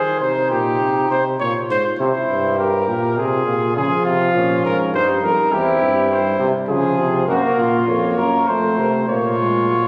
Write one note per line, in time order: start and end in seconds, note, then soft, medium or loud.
0.00 0.22 D#3 medium
0.00 0.20 G#4 medium
0.00 0.20 C5 medium
0.21 0.52 C3 medium
0.21 1.23 D#4 medium
0.21 0.49 C5 medium
0.50 0.80 A#2 medium
0.50 1.09 G4 medium
0.80 1.09 C3 medium
1.10 1.39 C3 medium
1.10 1.24 C5 medium
1.40 1.54 A#2 medium
1.40 2.01 F4 medium
1.40 1.53 C#5 medium
1.70 1.83 G#2 medium
1.70 1.84 C5 medium
1.99 2.13 C3 medium
1.99 2.58 E4 medium
1.99 2.57 C5 medium
2.29 2.87 G2 medium
2.58 2.86 G4 medium
2.58 3.16 A#4 medium
2.87 3.18 A#2 medium
2.87 3.16 G4 medium
3.17 3.46 C3 medium
3.17 3.74 F4 medium
3.17 3.75 G#4 medium
3.46 3.75 A#2 medium
3.75 3.89 C#3 medium
3.75 4.90 F3 medium
3.75 4.33 F4 medium
3.75 4.05 G#4 medium
4.05 4.34 C3 medium
4.05 4.63 F4 medium
4.34 4.63 A#2 medium
4.34 4.92 C#4 medium
4.64 4.93 G#2 medium
4.64 4.78 A#4 medium
4.93 5.22 G2 medium
4.93 5.51 G3 medium
4.93 5.51 D#4 medium
4.93 5.07 C5 medium
5.23 5.36 F2 medium
5.23 5.54 A#4 medium
5.52 5.80 E2 medium
5.52 6.10 C4 medium
5.52 6.40 E4 medium
5.52 6.11 G4 medium
5.81 6.39 G2 medium
6.11 6.40 G3 medium
6.11 6.48 C5 medium
6.39 6.53 C3 medium
6.39 6.69 G3 medium
6.69 6.98 C#3 medium
6.69 7.27 F3 medium
6.69 7.25 F4 medium
6.69 7.24 G#4 medium
6.98 7.27 C3 medium
7.28 7.42 F#2 medium
7.28 7.86 A#3 medium
7.28 7.61 F#4 medium
7.28 7.37 A#4 medium
7.35 7.45 C5 medium
7.43 7.88 A#4 medium
7.58 7.87 A#2 medium
7.58 8.17 F4 medium
7.87 8.16 F2 medium
7.87 8.49 A#3 medium
7.87 8.46 C#5 medium
8.17 8.47 F#2 medium
8.17 8.49 A#4 medium
8.47 8.77 F2 medium
8.47 9.07 A3 medium
8.47 8.77 C5 medium
8.47 9.07 C5 medium
8.78 9.10 C3 medium
8.78 8.92 A#4 medium
9.08 9.88 A#2 medium
9.08 9.38 A#3 medium
9.08 9.88 F4 medium
9.08 9.88 C#5 medium
9.39 9.69 G#3 medium
9.70 9.88 F#3 medium